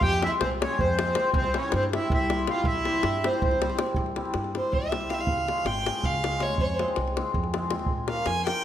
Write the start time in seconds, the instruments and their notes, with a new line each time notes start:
Already playing: hammered dulcimer G#3
0.01 upright bass F2, violin G4, accordion G5, davul low
0.12 davul high
0.21 hammered dulcimer G#3 C4 F4 G#4 C5, accordion E5, davul high
0.26 violin E4
0.40 upright bass C2, accordion C5, davul high
0.44 violin C4
0.51 davul high
0.61 hammered dulcimer G#3 C4 F4 G#4 C5, accordion C#5, davul high
0.66 violin C#4
0.71 davul high
0.79 upright bass F2, accordion C5, davul low
0.83 violin C4
0.99 hammered dulcimer G#3 C4 F4 G#4 C5, davul high
1.08 davul high
1.15 hammered dulcimer G#3 C4 F4 G#4 C5, davul high
1.34 upright bass C2, violin C4, accordion C5, davul low
1.44 davul high
1.53 hammered dulcimer G3 C4 E4 G4 C5, violin C#4, davul high
1.58 accordion C#5
1.72 upright bass G2, accordion C5, davul high
1.76 violin C4
1.83 davul high
1.93 hammered dulcimer G3 C4 E4 G4 C5, violin E4, accordion E5, davul high
2.02 davul high
2.10 upright bass C2, accordion E5, davul low
2.15 violin E4
2.30 hammered dulcimer G3 C4 E4 G4 C5, davul high
2.39 davul high
2.47 hammered dulcimer G3 C4 E4 G4 C5, accordion F5, davul high
2.52 violin F4
2.64 upright bass C2, accordion E5, davul low
2.69 violin E4
2.75 davul high
2.85 hammered dulcimer G3 C4 E4 G4 C5, davul high
2.94 davul high
3.03 upright bass G2, davul high
3.23 hammered dulcimer G3 C4 E4 G4 C5, accordion C5, davul high
3.28 violin C4
3.33 davul high
3.42 upright bass C2, violin C4, accordion C5, davul low
3.51 davul high
3.60 hammered dulcimer G3 C4 E4 G4 C5, davul high
3.70 davul high
3.78 hammered dulcimer G3 C4 E4 G4 C5, davul high
3.86 davul high
3.94 upright bass C2, davul low
4.06 davul high
4.16 hammered dulcimer G3 C4 E4 G4, davul high
4.25 davul high
4.34 upright bass G2, davul high
4.44 davul high
4.54 hammered dulcimer G3 C4 E4 G4, violin C5, davul high
4.72 upright bass C2, violin E5, davul low
4.82 davul high
4.92 hammered dulcimer G3 C4 E4 G4, davul high
5.01 davul high
5.09 hammered dulcimer G3 C4 E4 G4, violin F5, davul high
5.14 violin E5
5.19 violin F5, davul high
5.26 upright bass C#2, davul low
5.38 davul high
5.46 hammered dulcimer G#3 C#4 F4 G#4, davul high
5.58 davul high
5.65 upright bass G#1, violin G5, davul high
5.86 hammered dulcimer G#3 C#4 F4 G#4, davul high
6.04 upright bass C#2, violin F5, davul low
6.14 davul high
6.23 hammered dulcimer G#3 C#4 F4 G#4, davul high
6.32 davul high
6.39 hammered dulcimer G#3 C#4 F4 G#4, violin C#5, davul high
6.49 davul high
6.57 upright bass F2, violin C5, davul low
6.64 violin C#5
6.70 violin C5, davul high
6.78 hammered dulcimer G#3 C4 F4 G#4, davul high
6.88 davul high
6.96 upright bass C2, davul high
7.08 davul high
7.17 hammered dulcimer G#3 C4 F4 G#4, davul high
7.34 upright bass F2, davul low
7.44 davul high
7.53 hammered dulcimer G#3 C4 F4 G#4, davul high
7.69 hammered dulcimer G#3 C4 F4 G#4, davul high
7.79 davul high
7.86 upright bass A#1, davul low
8.07 hammered dulcimer A#3 C#4 F4 A#4, violin F5, davul high
8.16 davul high
8.26 upright bass F2, violin G#5, davul high
8.36 davul high
8.45 hammered dulcimer A#3 C#4 F4 A#4, violin G5, davul high